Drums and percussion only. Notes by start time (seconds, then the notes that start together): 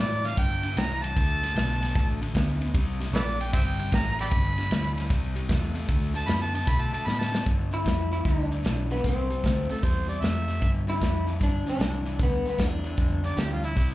0.25 snare, ride
0.37 kick, snare, ride
0.63 ride
0.77 snare, ride
1.04 ride
1.17 kick, ride
1.44 snare, ride
1.56 snare, ride
1.83 snare, ride
1.95 kick, snare, ride
2.22 ride
2.35 kick, snare, ride
2.61 ride
2.74 kick, ride
3.01 snare, ride
3.15 snare, ride
3.41 ride
3.53 kick, snare, ride
3.79 ride
3.92 kick, snare, ride
4.19 snare, ride
4.31 kick, ride
4.58 snare, ride
4.71 snare, ride
4.98 snare, ride
5.10 kick, snare, ride
5.36 ride
5.49 kick, snare, ride
5.75 ride
5.89 kick, ride
6.15 ride
6.28 snare, ride
6.55 ride
6.67 kick, snare, ride
6.94 ride
7.08 snare
7.21 snare
7.35 snare
7.46 kick, closed hi-hat
7.73 closed hi-hat
7.86 kick, snare, closed hi-hat
8.12 closed hi-hat
8.25 kick, snare, closed hi-hat
8.52 closed hi-hat
8.65 snare, closed hi-hat
8.91 closed hi-hat
9.04 kick, closed hi-hat
9.31 closed hi-hat
9.44 kick, snare, closed hi-hat
9.70 closed hi-hat
9.83 kick, closed hi-hat
10.09 closed hi-hat
10.23 snare, closed hi-hat
10.49 closed hi-hat
10.62 kick, closed hi-hat
10.89 closed hi-hat
11.02 kick, snare, closed hi-hat
11.28 closed hi-hat
11.41 kick, snare, closed hi-hat
11.67 closed hi-hat
11.80 snare, closed hi-hat
12.06 closed hi-hat
12.19 kick, closed hi-hat
12.45 closed hi-hat
12.58 kick, snare, closed hi-hat
12.84 closed hi-hat
12.97 kick, closed hi-hat
13.24 closed hi-hat
13.37 snare, closed hi-hat
13.64 closed hi-hat
13.77 kick, closed hi-hat